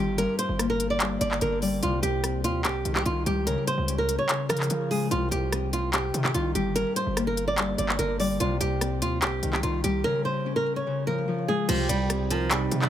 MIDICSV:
0, 0, Header, 1, 7, 480
1, 0, Start_track
1, 0, Key_signature, -3, "minor"
1, 0, Tempo, 410959
1, 213, Time_signature, 4, 2, 24, 8
1, 15056, End_track
2, 0, Start_track
2, 0, Title_t, "Soft synth lead"
2, 0, Program_c, 0, 80
2, 13651, Note_on_c, 0, 67, 104
2, 14328, Note_off_c, 0, 67, 0
2, 14373, Note_on_c, 0, 70, 76
2, 14601, Note_off_c, 0, 70, 0
2, 15056, End_track
3, 0, Start_track
3, 0, Title_t, "Nylon-string guitar"
3, 0, Program_c, 1, 24
3, 0, Note_on_c, 1, 67, 72
3, 187, Note_off_c, 1, 67, 0
3, 211, Note_on_c, 1, 70, 99
3, 425, Note_off_c, 1, 70, 0
3, 451, Note_on_c, 1, 72, 73
3, 790, Note_off_c, 1, 72, 0
3, 814, Note_on_c, 1, 70, 82
3, 1027, Note_off_c, 1, 70, 0
3, 1054, Note_on_c, 1, 74, 82
3, 1392, Note_off_c, 1, 74, 0
3, 1412, Note_on_c, 1, 74, 78
3, 1626, Note_off_c, 1, 74, 0
3, 1655, Note_on_c, 1, 70, 79
3, 1867, Note_off_c, 1, 70, 0
3, 1896, Note_on_c, 1, 74, 70
3, 2108, Note_off_c, 1, 74, 0
3, 2135, Note_on_c, 1, 65, 91
3, 2347, Note_off_c, 1, 65, 0
3, 2367, Note_on_c, 1, 67, 87
3, 2821, Note_off_c, 1, 67, 0
3, 2853, Note_on_c, 1, 65, 91
3, 3066, Note_off_c, 1, 65, 0
3, 3095, Note_on_c, 1, 67, 90
3, 3432, Note_off_c, 1, 67, 0
3, 3453, Note_on_c, 1, 67, 89
3, 3560, Note_off_c, 1, 67, 0
3, 3571, Note_on_c, 1, 65, 84
3, 3785, Note_off_c, 1, 65, 0
3, 3812, Note_on_c, 1, 67, 88
3, 4026, Note_off_c, 1, 67, 0
3, 4049, Note_on_c, 1, 70, 94
3, 4264, Note_off_c, 1, 70, 0
3, 4291, Note_on_c, 1, 72, 80
3, 4631, Note_off_c, 1, 72, 0
3, 4653, Note_on_c, 1, 70, 80
3, 4866, Note_off_c, 1, 70, 0
3, 4888, Note_on_c, 1, 73, 74
3, 5229, Note_off_c, 1, 73, 0
3, 5247, Note_on_c, 1, 70, 85
3, 5701, Note_off_c, 1, 70, 0
3, 5733, Note_on_c, 1, 68, 80
3, 5946, Note_off_c, 1, 68, 0
3, 5969, Note_on_c, 1, 65, 94
3, 6184, Note_off_c, 1, 65, 0
3, 6206, Note_on_c, 1, 67, 88
3, 6660, Note_off_c, 1, 67, 0
3, 6694, Note_on_c, 1, 65, 84
3, 6907, Note_off_c, 1, 65, 0
3, 6932, Note_on_c, 1, 67, 86
3, 7271, Note_off_c, 1, 67, 0
3, 7296, Note_on_c, 1, 67, 81
3, 7401, Note_off_c, 1, 67, 0
3, 7409, Note_on_c, 1, 65, 80
3, 7624, Note_off_c, 1, 65, 0
3, 7651, Note_on_c, 1, 67, 73
3, 7865, Note_off_c, 1, 67, 0
3, 7890, Note_on_c, 1, 70, 100
3, 8105, Note_off_c, 1, 70, 0
3, 8131, Note_on_c, 1, 72, 75
3, 8470, Note_off_c, 1, 72, 0
3, 8492, Note_on_c, 1, 70, 82
3, 8706, Note_off_c, 1, 70, 0
3, 8731, Note_on_c, 1, 74, 83
3, 9070, Note_off_c, 1, 74, 0
3, 9088, Note_on_c, 1, 74, 75
3, 9304, Note_off_c, 1, 74, 0
3, 9331, Note_on_c, 1, 70, 82
3, 9545, Note_off_c, 1, 70, 0
3, 9574, Note_on_c, 1, 74, 67
3, 9787, Note_off_c, 1, 74, 0
3, 9814, Note_on_c, 1, 65, 93
3, 10027, Note_off_c, 1, 65, 0
3, 10050, Note_on_c, 1, 67, 86
3, 10503, Note_off_c, 1, 67, 0
3, 10534, Note_on_c, 1, 65, 88
3, 10747, Note_off_c, 1, 65, 0
3, 10773, Note_on_c, 1, 67, 90
3, 11111, Note_off_c, 1, 67, 0
3, 11133, Note_on_c, 1, 67, 88
3, 11240, Note_off_c, 1, 67, 0
3, 11250, Note_on_c, 1, 65, 88
3, 11465, Note_off_c, 1, 65, 0
3, 11494, Note_on_c, 1, 67, 88
3, 11707, Note_off_c, 1, 67, 0
3, 11728, Note_on_c, 1, 70, 98
3, 11944, Note_off_c, 1, 70, 0
3, 11971, Note_on_c, 1, 72, 77
3, 12310, Note_off_c, 1, 72, 0
3, 12334, Note_on_c, 1, 70, 77
3, 12547, Note_off_c, 1, 70, 0
3, 12571, Note_on_c, 1, 73, 75
3, 12910, Note_off_c, 1, 73, 0
3, 12930, Note_on_c, 1, 70, 89
3, 13382, Note_off_c, 1, 70, 0
3, 13413, Note_on_c, 1, 68, 79
3, 13626, Note_off_c, 1, 68, 0
3, 13649, Note_on_c, 1, 53, 100
3, 13864, Note_off_c, 1, 53, 0
3, 13888, Note_on_c, 1, 55, 85
3, 14341, Note_off_c, 1, 55, 0
3, 14374, Note_on_c, 1, 53, 86
3, 14587, Note_off_c, 1, 53, 0
3, 14609, Note_on_c, 1, 55, 84
3, 14949, Note_off_c, 1, 55, 0
3, 14979, Note_on_c, 1, 55, 81
3, 15056, Note_off_c, 1, 55, 0
3, 15056, End_track
4, 0, Start_track
4, 0, Title_t, "Ambient pad"
4, 0, Program_c, 2, 92
4, 13650, Note_on_c, 2, 67, 92
4, 13651, Note_on_c, 2, 48, 86
4, 13651, Note_on_c, 2, 60, 77
4, 13651, Note_on_c, 2, 63, 80
4, 15056, Note_off_c, 2, 48, 0
4, 15056, Note_off_c, 2, 60, 0
4, 15056, Note_off_c, 2, 63, 0
4, 15056, Note_off_c, 2, 67, 0
4, 15056, End_track
5, 0, Start_track
5, 0, Title_t, "Harp"
5, 0, Program_c, 3, 46
5, 0, Note_on_c, 3, 51, 95
5, 0, Note_on_c, 3, 55, 78
5, 0, Note_on_c, 3, 60, 75
5, 212, Note_on_c, 3, 43, 84
5, 271, Note_off_c, 3, 51, 0
5, 271, Note_off_c, 3, 55, 0
5, 691, Note_on_c, 3, 58, 81
5, 1158, Note_off_c, 3, 43, 0
5, 1172, Note_on_c, 3, 43, 79
5, 1413, Note_on_c, 3, 50, 80
5, 1638, Note_off_c, 3, 50, 0
5, 1652, Note_on_c, 3, 50, 95
5, 1892, Note_on_c, 3, 55, 81
5, 2132, Note_on_c, 3, 48, 96
5, 2191, Note_off_c, 3, 43, 0
5, 2191, Note_off_c, 3, 50, 0
5, 2191, Note_off_c, 3, 55, 0
5, 2276, Note_off_c, 3, 60, 0
5, 2611, Note_on_c, 3, 60, 86
5, 3077, Note_off_c, 3, 48, 0
5, 3091, Note_on_c, 3, 48, 77
5, 3332, Note_on_c, 3, 51, 80
5, 3391, Note_off_c, 3, 48, 0
5, 3559, Note_off_c, 3, 51, 0
5, 3573, Note_on_c, 3, 51, 84
5, 3812, Note_on_c, 3, 55, 77
5, 4053, Note_on_c, 3, 49, 88
5, 4111, Note_off_c, 3, 51, 0
5, 4111, Note_off_c, 3, 55, 0
5, 4123, Note_off_c, 3, 60, 0
5, 4447, Note_off_c, 3, 58, 0
5, 4532, Note_on_c, 3, 61, 77
5, 5000, Note_off_c, 3, 49, 0
5, 5014, Note_on_c, 3, 49, 73
5, 5254, Note_on_c, 3, 53, 79
5, 5479, Note_off_c, 3, 53, 0
5, 5493, Note_on_c, 3, 53, 92
5, 5735, Note_on_c, 3, 56, 81
5, 5973, Note_on_c, 3, 48, 82
5, 6031, Note_off_c, 3, 49, 0
5, 6031, Note_off_c, 3, 53, 0
5, 6031, Note_off_c, 3, 56, 0
5, 6043, Note_off_c, 3, 61, 0
5, 6453, Note_on_c, 3, 60, 75
5, 6918, Note_off_c, 3, 48, 0
5, 6932, Note_on_c, 3, 48, 77
5, 7172, Note_on_c, 3, 51, 75
5, 7231, Note_off_c, 3, 48, 0
5, 7397, Note_off_c, 3, 51, 0
5, 7411, Note_on_c, 3, 51, 94
5, 7650, Note_on_c, 3, 55, 80
5, 7892, Note_on_c, 3, 43, 82
5, 7951, Note_off_c, 3, 51, 0
5, 7951, Note_off_c, 3, 55, 0
5, 8371, Note_on_c, 3, 58, 79
5, 8838, Note_off_c, 3, 43, 0
5, 8852, Note_on_c, 3, 43, 77
5, 9093, Note_on_c, 3, 50, 78
5, 9319, Note_off_c, 3, 50, 0
5, 9333, Note_on_c, 3, 50, 96
5, 9573, Note_on_c, 3, 55, 79
5, 9812, Note_on_c, 3, 48, 95
5, 9871, Note_off_c, 3, 43, 0
5, 9871, Note_off_c, 3, 50, 0
5, 9871, Note_off_c, 3, 55, 0
5, 9957, Note_off_c, 3, 60, 0
5, 10293, Note_on_c, 3, 60, 83
5, 10758, Note_off_c, 3, 48, 0
5, 10772, Note_on_c, 3, 48, 81
5, 11013, Note_on_c, 3, 51, 79
5, 11071, Note_off_c, 3, 48, 0
5, 11238, Note_off_c, 3, 51, 0
5, 11253, Note_on_c, 3, 51, 86
5, 11492, Note_on_c, 3, 55, 74
5, 11732, Note_on_c, 3, 49, 91
5, 11791, Note_off_c, 3, 51, 0
5, 11791, Note_off_c, 3, 55, 0
5, 11803, Note_off_c, 3, 60, 0
5, 12127, Note_off_c, 3, 58, 0
5, 12212, Note_on_c, 3, 61, 76
5, 12678, Note_off_c, 3, 49, 0
5, 12692, Note_on_c, 3, 49, 72
5, 12933, Note_on_c, 3, 53, 81
5, 13158, Note_off_c, 3, 53, 0
5, 13172, Note_on_c, 3, 53, 94
5, 13412, Note_on_c, 3, 56, 78
5, 13653, Note_on_c, 3, 48, 84
5, 13711, Note_off_c, 3, 49, 0
5, 13711, Note_off_c, 3, 53, 0
5, 13711, Note_off_c, 3, 56, 0
5, 13723, Note_off_c, 3, 61, 0
5, 14132, Note_on_c, 3, 60, 83
5, 14599, Note_off_c, 3, 48, 0
5, 14613, Note_on_c, 3, 48, 78
5, 14852, Note_on_c, 3, 51, 75
5, 14911, Note_off_c, 3, 48, 0
5, 15056, Note_off_c, 3, 51, 0
5, 15056, Note_off_c, 3, 60, 0
5, 15056, End_track
6, 0, Start_track
6, 0, Title_t, "808-style bass"
6, 0, Program_c, 4, 38
6, 0, Note_on_c, 4, 31, 108
6, 318, Note_off_c, 4, 31, 0
6, 572, Note_on_c, 4, 31, 99
6, 1379, Note_off_c, 4, 31, 0
6, 1411, Note_on_c, 4, 31, 101
6, 1642, Note_off_c, 4, 31, 0
6, 1652, Note_on_c, 4, 31, 104
6, 2113, Note_off_c, 4, 31, 0
6, 2132, Note_on_c, 4, 36, 114
6, 2363, Note_off_c, 4, 36, 0
6, 2372, Note_on_c, 4, 36, 109
6, 2852, Note_on_c, 4, 39, 104
6, 2870, Note_off_c, 4, 36, 0
6, 3093, Note_on_c, 4, 36, 100
6, 3110, Note_off_c, 4, 39, 0
6, 3321, Note_off_c, 4, 36, 0
6, 3333, Note_on_c, 4, 36, 106
6, 3563, Note_off_c, 4, 36, 0
6, 3573, Note_on_c, 4, 36, 104
6, 3803, Note_off_c, 4, 36, 0
6, 3812, Note_on_c, 4, 37, 108
6, 4158, Note_off_c, 4, 37, 0
6, 4412, Note_on_c, 4, 37, 102
6, 4873, Note_off_c, 4, 37, 0
6, 5253, Note_on_c, 4, 49, 104
6, 5483, Note_off_c, 4, 49, 0
6, 5493, Note_on_c, 4, 49, 107
6, 5954, Note_off_c, 4, 49, 0
6, 5974, Note_on_c, 4, 36, 111
6, 6204, Note_off_c, 4, 36, 0
6, 6213, Note_on_c, 4, 36, 106
6, 7135, Note_off_c, 4, 36, 0
6, 7173, Note_on_c, 4, 48, 107
6, 7403, Note_off_c, 4, 48, 0
6, 7412, Note_on_c, 4, 36, 105
6, 7643, Note_off_c, 4, 36, 0
6, 7652, Note_on_c, 4, 31, 105
6, 7998, Note_off_c, 4, 31, 0
6, 8253, Note_on_c, 4, 31, 99
6, 9059, Note_off_c, 4, 31, 0
6, 9092, Note_on_c, 4, 31, 106
6, 9323, Note_off_c, 4, 31, 0
6, 9332, Note_on_c, 4, 31, 102
6, 9793, Note_off_c, 4, 31, 0
6, 9813, Note_on_c, 4, 36, 110
6, 10043, Note_off_c, 4, 36, 0
6, 10053, Note_on_c, 4, 36, 111
6, 10533, Note_on_c, 4, 39, 101
6, 10550, Note_off_c, 4, 36, 0
6, 10773, Note_on_c, 4, 36, 97
6, 10791, Note_off_c, 4, 39, 0
6, 11001, Note_off_c, 4, 36, 0
6, 11013, Note_on_c, 4, 36, 102
6, 11243, Note_off_c, 4, 36, 0
6, 11253, Note_on_c, 4, 36, 103
6, 11483, Note_off_c, 4, 36, 0
6, 11493, Note_on_c, 4, 36, 102
6, 11723, Note_off_c, 4, 36, 0
6, 13652, Note_on_c, 4, 36, 114
6, 13883, Note_off_c, 4, 36, 0
6, 13892, Note_on_c, 4, 36, 108
6, 14814, Note_off_c, 4, 36, 0
6, 14853, Note_on_c, 4, 48, 108
6, 15056, Note_off_c, 4, 48, 0
6, 15056, End_track
7, 0, Start_track
7, 0, Title_t, "Drums"
7, 213, Note_on_c, 9, 42, 72
7, 330, Note_off_c, 9, 42, 0
7, 453, Note_on_c, 9, 42, 88
7, 570, Note_off_c, 9, 42, 0
7, 693, Note_on_c, 9, 37, 68
7, 694, Note_on_c, 9, 42, 86
7, 810, Note_off_c, 9, 37, 0
7, 811, Note_off_c, 9, 42, 0
7, 933, Note_on_c, 9, 42, 78
7, 1050, Note_off_c, 9, 42, 0
7, 1171, Note_on_c, 9, 42, 77
7, 1172, Note_on_c, 9, 39, 120
7, 1287, Note_off_c, 9, 42, 0
7, 1289, Note_off_c, 9, 39, 0
7, 1413, Note_on_c, 9, 42, 84
7, 1530, Note_off_c, 9, 42, 0
7, 1533, Note_on_c, 9, 39, 69
7, 1650, Note_off_c, 9, 39, 0
7, 1650, Note_on_c, 9, 42, 76
7, 1767, Note_off_c, 9, 42, 0
7, 1893, Note_on_c, 9, 46, 55
7, 2009, Note_off_c, 9, 46, 0
7, 2133, Note_on_c, 9, 42, 72
7, 2250, Note_off_c, 9, 42, 0
7, 2372, Note_on_c, 9, 42, 85
7, 2489, Note_off_c, 9, 42, 0
7, 2612, Note_on_c, 9, 37, 70
7, 2613, Note_on_c, 9, 42, 85
7, 2729, Note_off_c, 9, 37, 0
7, 2730, Note_off_c, 9, 42, 0
7, 2853, Note_on_c, 9, 42, 77
7, 2970, Note_off_c, 9, 42, 0
7, 3090, Note_on_c, 9, 42, 75
7, 3091, Note_on_c, 9, 39, 123
7, 3207, Note_off_c, 9, 42, 0
7, 3208, Note_off_c, 9, 39, 0
7, 3331, Note_on_c, 9, 42, 80
7, 3448, Note_off_c, 9, 42, 0
7, 3452, Note_on_c, 9, 39, 68
7, 3569, Note_off_c, 9, 39, 0
7, 3569, Note_on_c, 9, 42, 75
7, 3686, Note_off_c, 9, 42, 0
7, 3812, Note_on_c, 9, 42, 77
7, 3928, Note_off_c, 9, 42, 0
7, 4051, Note_on_c, 9, 42, 73
7, 4168, Note_off_c, 9, 42, 0
7, 4292, Note_on_c, 9, 42, 85
7, 4409, Note_off_c, 9, 42, 0
7, 4534, Note_on_c, 9, 42, 86
7, 4651, Note_off_c, 9, 42, 0
7, 4774, Note_on_c, 9, 42, 76
7, 4891, Note_off_c, 9, 42, 0
7, 5011, Note_on_c, 9, 42, 79
7, 5012, Note_on_c, 9, 39, 122
7, 5128, Note_off_c, 9, 42, 0
7, 5129, Note_off_c, 9, 39, 0
7, 5252, Note_on_c, 9, 42, 83
7, 5253, Note_on_c, 9, 37, 100
7, 5333, Note_off_c, 9, 42, 0
7, 5333, Note_on_c, 9, 42, 66
7, 5370, Note_off_c, 9, 37, 0
7, 5374, Note_on_c, 9, 39, 68
7, 5413, Note_off_c, 9, 42, 0
7, 5413, Note_on_c, 9, 42, 47
7, 5489, Note_off_c, 9, 42, 0
7, 5489, Note_on_c, 9, 42, 80
7, 5491, Note_off_c, 9, 39, 0
7, 5606, Note_off_c, 9, 42, 0
7, 5733, Note_on_c, 9, 46, 55
7, 5850, Note_off_c, 9, 46, 0
7, 5972, Note_on_c, 9, 42, 74
7, 6089, Note_off_c, 9, 42, 0
7, 6212, Note_on_c, 9, 42, 88
7, 6329, Note_off_c, 9, 42, 0
7, 6452, Note_on_c, 9, 37, 71
7, 6454, Note_on_c, 9, 42, 88
7, 6569, Note_off_c, 9, 37, 0
7, 6571, Note_off_c, 9, 42, 0
7, 6693, Note_on_c, 9, 42, 79
7, 6810, Note_off_c, 9, 42, 0
7, 6931, Note_on_c, 9, 42, 79
7, 6932, Note_on_c, 9, 39, 118
7, 7047, Note_off_c, 9, 42, 0
7, 7049, Note_off_c, 9, 39, 0
7, 7173, Note_on_c, 9, 42, 77
7, 7290, Note_off_c, 9, 42, 0
7, 7294, Note_on_c, 9, 39, 67
7, 7410, Note_on_c, 9, 42, 79
7, 7411, Note_off_c, 9, 39, 0
7, 7527, Note_off_c, 9, 42, 0
7, 7653, Note_on_c, 9, 42, 78
7, 7769, Note_off_c, 9, 42, 0
7, 7892, Note_on_c, 9, 42, 74
7, 8009, Note_off_c, 9, 42, 0
7, 8132, Note_on_c, 9, 42, 85
7, 8249, Note_off_c, 9, 42, 0
7, 8373, Note_on_c, 9, 37, 72
7, 8374, Note_on_c, 9, 42, 87
7, 8490, Note_off_c, 9, 37, 0
7, 8491, Note_off_c, 9, 42, 0
7, 8613, Note_on_c, 9, 42, 74
7, 8729, Note_off_c, 9, 42, 0
7, 8850, Note_on_c, 9, 42, 77
7, 8851, Note_on_c, 9, 39, 120
7, 8967, Note_off_c, 9, 42, 0
7, 8968, Note_off_c, 9, 39, 0
7, 9092, Note_on_c, 9, 42, 80
7, 9209, Note_off_c, 9, 42, 0
7, 9213, Note_on_c, 9, 39, 69
7, 9330, Note_off_c, 9, 39, 0
7, 9331, Note_on_c, 9, 42, 79
7, 9447, Note_off_c, 9, 42, 0
7, 9573, Note_on_c, 9, 46, 57
7, 9690, Note_off_c, 9, 46, 0
7, 9813, Note_on_c, 9, 42, 72
7, 9930, Note_off_c, 9, 42, 0
7, 10053, Note_on_c, 9, 42, 90
7, 10170, Note_off_c, 9, 42, 0
7, 10293, Note_on_c, 9, 37, 67
7, 10295, Note_on_c, 9, 42, 84
7, 10410, Note_off_c, 9, 37, 0
7, 10411, Note_off_c, 9, 42, 0
7, 10534, Note_on_c, 9, 42, 79
7, 10651, Note_off_c, 9, 42, 0
7, 10770, Note_on_c, 9, 42, 77
7, 10772, Note_on_c, 9, 39, 123
7, 10887, Note_off_c, 9, 42, 0
7, 10888, Note_off_c, 9, 39, 0
7, 11012, Note_on_c, 9, 42, 82
7, 11129, Note_off_c, 9, 42, 0
7, 11132, Note_on_c, 9, 39, 66
7, 11249, Note_off_c, 9, 39, 0
7, 11249, Note_on_c, 9, 42, 78
7, 11366, Note_off_c, 9, 42, 0
7, 11492, Note_on_c, 9, 42, 79
7, 11609, Note_off_c, 9, 42, 0
7, 13651, Note_on_c, 9, 42, 74
7, 13651, Note_on_c, 9, 49, 105
7, 13768, Note_off_c, 9, 42, 0
7, 13768, Note_off_c, 9, 49, 0
7, 13892, Note_on_c, 9, 42, 90
7, 14009, Note_off_c, 9, 42, 0
7, 14131, Note_on_c, 9, 37, 73
7, 14132, Note_on_c, 9, 42, 88
7, 14248, Note_off_c, 9, 37, 0
7, 14249, Note_off_c, 9, 42, 0
7, 14372, Note_on_c, 9, 42, 79
7, 14489, Note_off_c, 9, 42, 0
7, 14610, Note_on_c, 9, 42, 79
7, 14611, Note_on_c, 9, 39, 125
7, 14727, Note_off_c, 9, 42, 0
7, 14728, Note_off_c, 9, 39, 0
7, 14851, Note_on_c, 9, 42, 82
7, 14968, Note_off_c, 9, 42, 0
7, 14972, Note_on_c, 9, 39, 69
7, 15056, Note_off_c, 9, 39, 0
7, 15056, End_track
0, 0, End_of_file